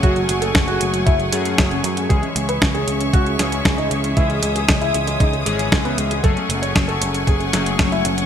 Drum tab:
HH |xxxxxxxxxxxxxxxx|xxxxxxxxxxxxxxxx|xxxxxxxxxxxxxxxx|xxxxxxxxxxxxxxxx|
SD |----o-------o---|----o-----o-o---|----o-------o---|----o-----o-o---|
BD |o---o---o---o---|o---o---o---o---|o---o---o---o---|o---o---o---o---|